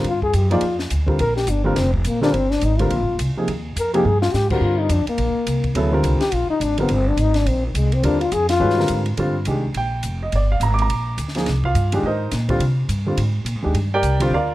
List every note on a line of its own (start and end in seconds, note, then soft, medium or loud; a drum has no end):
0.04 0.32 G2 medium
0.04 0.23 F4 medium
0.04 ride medium
0.22 0.37 G#4 loud
0.22 kick soft
0.33 0.61 F#2 medium
0.33 0.51 G4 medium
0.33 hi-hat pedal soft
0.33 ride medium
0.50 0.61 F3 medium
0.50 0.61 A#3 medium
0.50 0.62 D#4 medium
0.50 0.78 F4 loud
0.50 0.62 G#4 medium
0.50 0.62 D5 medium
0.50 ride soft
0.61 0.90 F2 medium
0.61 ride medium
0.79 snare soft
0.90 1.19 D2 medium
0.90 hi-hat pedal medium
0.90 ride medium
1.06 1.18 D3 medium
1.06 1.18 G3 medium
1.06 1.18 C4 medium
1.06 1.18 F4 medium
1.06 1.19 A#4 medium
1.06 kick medium
1.19 1.47 A#1 medium
1.19 1.36 A#4 loud
1.19 ride medium
1.36 1.51 G4 medium
1.36 snare soft
1.47 1.75 G1 loud
1.47 1.65 D4 medium
1.47 hi-hat pedal medium
1.47 ride medium
1.64 1.75 D3 medium
1.64 1.75 G3 medium
1.64 1.79 A#3 medium
1.64 1.75 C4 medium
1.64 1.76 F4 medium
1.64 1.76 A#4 medium
1.76 2.04 F1 medium
1.76 1.93 C4 medium
1.76 snare soft
1.76 ride medium
1.94 2.08 F3 soft
1.94 kick soft
2.05 2.33 A#1 medium
2.05 2.22 A#3 medium
2.05 hi-hat pedal medium
2.05 ride medium
2.21 2.32 D3 medium
2.21 2.32 G3 medium
2.21 2.33 C4 medium
2.21 2.36 D4 loud
2.21 2.33 F4 medium
2.21 2.33 A#4 medium
2.21 snare soft
2.33 2.61 G1 medium
2.33 2.53 C4 medium
2.33 ride medium
2.51 2.66 D4 medium
2.51 snare soft
2.61 2.90 G#1 medium
2.61 2.81 D#4 medium
2.61 hi-hat pedal soft
2.61 ride medium
2.79 2.90 D3 medium
2.79 2.90 G3 medium
2.79 2.90 C4 medium
2.79 3.19 F4 loud
2.79 2.90 F4 medium
2.79 2.91 A#4 medium
2.79 ride soft
2.90 3.00 A#1 medium
2.90 ride medium
3.00 3.09 G#1 medium
3.09 3.18 D#1 medium
3.19 3.35 C2 medium
3.19 hi-hat pedal medium
3.19 ride medium
3.36 3.47 C3 medium
3.36 3.47 F3 medium
3.36 3.47 A#3 medium
3.36 3.47 D#4 medium
3.36 3.48 G#4 medium
3.36 muted upright bass stroke soft
3.48 3.75 D#2 medium
3.48 ride medium
3.76 4.04 F2 medium
3.76 3.94 A#4 medium
3.76 hi-hat pedal medium
3.76 ride medium
3.94 4.04 C3 medium
3.94 4.04 F3 medium
3.94 4.04 A#3 medium
3.94 4.04 D#4 medium
3.94 4.08 G4 medium
3.94 4.04 G#4 medium
3.94 ride soft
4.05 4.32 G2 medium
4.05 4.21 G#4 medium
4.22 4.34 F4 medium
4.22 snare medium
4.33 4.60 G#2 medium
4.33 4.50 G4 loud
4.33 snare soft
4.33 hi-hat pedal medium
4.50 4.88 D3 medium
4.50 4.88 G3 medium
4.50 4.88 C4 medium
4.50 4.89 F4 medium
4.50 4.64 F#4 medium
4.50 4.89 A#4 medium
4.50 kick medium
4.50 crash medium
4.61 4.89 G2 medium
4.61 4.81 F4 loud
4.79 4.94 D#4 medium
4.89 5.06 F2 loud
4.89 5.09 D4 medium
4.89 hi-hat pedal medium
4.89 ride medium
5.07 5.72 A#3 medium
5.07 muted upright bass stroke soft
5.07 ride soft
5.18 5.34 A#1 medium
5.18 ride medium
5.34 muted upright bass stroke soft
5.46 5.74 C2 medium
5.46 hi-hat pedal soft
5.46 ride medium
5.64 kick soft
5.64 ride soft
5.75 6.02 D2 loud
5.75 5.91 C#3 medium
5.75 5.91 F#3 medium
5.75 5.92 B3 medium
5.75 5.92 E4 medium
5.75 5.92 A4 medium
5.75 ride medium
5.91 6.17 D3 medium
5.91 6.18 G3 medium
5.91 6.18 C4 medium
5.91 6.18 F4 medium
5.91 6.19 A#4 medium
6.03 6.19 C2 medium
6.03 hi-hat pedal medium
6.03 ride medium
6.20 6.35 G4 medium
6.20 snare medium
6.20 ride soft
6.32 6.48 A#1 medium
6.32 6.49 F4 medium
6.32 ride medium
6.50 6.64 D#4 loud
6.50 muted upright bass stroke soft
6.60 6.88 G#1 medium
6.60 6.79 D4 medium
6.60 hi-hat pedal medium
6.60 ride medium
6.78 6.89 D3 medium
6.78 6.89 G3 medium
6.78 6.93 B3 medium
6.78 6.89 C4 medium
6.78 6.89 F4 medium
6.78 6.89 A#4 medium
6.78 ride soft
6.89 7.16 G1 medium
6.89 7.10 C4 medium
6.89 ride medium
7.08 7.23 D4 loud
7.17 7.45 G#1 medium
7.17 hi-hat pedal soft
7.17 ride medium
7.21 7.39 D#4 loud
7.34 7.50 D4 loud
7.34 snare soft
7.34 ride soft
7.46 7.74 A#1 medium
7.46 7.65 C4 medium
7.46 ride medium
7.66 7.78 D#3 medium
7.74 8.03 C2 medium
7.74 7.95 G#3 medium
7.74 hi-hat pedal medium
7.74 ride medium
7.92 8.06 C4 medium
7.92 ride soft
8.03 8.31 D#2 medium
8.03 8.19 D3 medium
8.03 8.19 G3 medium
8.03 8.20 C4 medium
8.03 8.20 D4 medium
8.03 8.20 F4 medium
8.03 8.20 A#4 medium
8.03 ride medium
8.21 8.35 F4 loud
8.21 ride soft
8.32 8.60 F2 loud
8.32 8.49 G#4 loud
8.32 hi-hat pedal medium
8.32 ride medium
8.49 9.09 F4 loud
8.49 snare soft
8.49 ride medium
8.60 8.88 G2 medium
8.60 8.76 D#3 medium
8.60 8.76 G#3 medium
8.60 8.76 C#4 medium
8.60 8.76 F#4 medium
8.60 8.77 B4 medium
8.70 snare soft
8.78 9.03 D3 medium
8.78 9.03 G3 medium
8.78 9.03 C4 soft
8.78 9.04 F4 medium
8.78 9.04 A#4 medium
8.78 snare soft
8.88 9.17 G#2 medium
8.88 hi-hat pedal soft
8.88 ride medium
9.06 ride soft
9.17 9.46 G2 medium
9.17 9.33 D3 medium
9.17 9.34 G3 medium
9.17 9.34 C4 medium
9.17 9.34 F4 medium
9.17 ride medium
9.45 9.74 C2 medium
9.45 9.62 D#3 medium
9.45 9.63 G#3 medium
9.45 9.63 D4 soft
9.45 9.63 G4 medium
9.45 hi-hat pedal soft
9.45 ride medium
9.74 10.03 A#1 medium
9.74 10.19 G5 medium
9.74 ride medium
10.03 10.31 F1 medium
10.03 hi-hat pedal medium
10.03 ride medium
10.23 10.33 D#5 medium
10.32 10.59 G1 medium
10.32 10.51 D5 medium
10.32 ride medium
10.52 10.62 F5 medium
10.60 10.88 G#1 loud
10.60 10.71 A#5 medium
10.60 hi-hat pedal soft
10.60 ride medium
10.74 10.82 D6 loud
10.79 11.08 A#5 medium
10.79 ride soft
10.88 11.17 A#1 medium
10.88 ride medium
11.18 11.46 D2 medium
11.18 hi-hat pedal soft
11.18 ride medium
11.28 snare soft
11.35 11.46 F3 medium
11.35 11.46 A#3 medium
11.35 11.46 D#4 medium
11.35 11.47 G#4 medium
11.35 snare soft
11.35 ride soft
11.46 11.74 C2 medium
11.46 snare soft
11.46 ride medium
11.64 12.02 F4 medium
11.64 12.02 F5 loud
11.64 kick medium
11.75 12.02 G2 medium
11.75 hi-hat pedal medium
11.75 ride medium
11.92 12.03 D#3 medium
11.92 12.03 G#3 medium
11.92 12.04 D4 medium
11.92 12.04 G4 medium
11.92 ride medium
12.03 12.31 G#2 medium
12.03 12.32 D#4 medium
12.03 12.32 A#4 medium
12.03 12.32 D#5 medium
12.07 12.32 C5 medium
12.31 12.59 A#2 medium
12.31 snare soft
12.31 hi-hat pedal medium
12.31 ride medium
12.48 12.59 D3 medium
12.48 12.60 G3 medium
12.48 12.60 C4 medium
12.48 12.60 F4 medium
12.48 kick medium
12.48 ride soft
12.60 12.88 C3 medium
12.60 ride medium
12.89 13.17 G2 medium
12.89 hi-hat pedal medium
12.89 ride medium
13.06 13.17 D3 medium
13.06 13.17 G3 medium
13.06 13.17 C4 medium
13.06 13.18 F4 medium
13.17 13.44 G#2 medium
13.17 ride medium
13.45 13.55 A#2 medium
13.45 hi-hat pedal soft
13.45 ride medium
13.55 13.65 G#2 soft
13.62 13.73 D#2 medium
13.62 13.74 D#3 medium
13.62 13.74 G#3 medium
13.62 13.74 D4 medium
13.62 13.75 G4 medium
13.74 14.02 G2 medium
13.74 ride medium
13.94 14.31 G4 medium
13.94 14.31 A#4 medium
13.94 14.31 D5 medium
13.94 14.31 G5 loud
14.02 14.30 C2 medium
14.02 hi-hat pedal medium
14.02 ride medium
14.20 14.31 D3 medium
14.20 14.31 G3 medium
14.20 14.32 C4 medium
14.20 14.32 F4 medium
14.20 ride medium
14.30 14.54 D2 medium
14.30 14.54 D5 medium
14.30 14.54 F5 medium
14.34 14.54 F4 medium
14.34 14.54 A#4 medium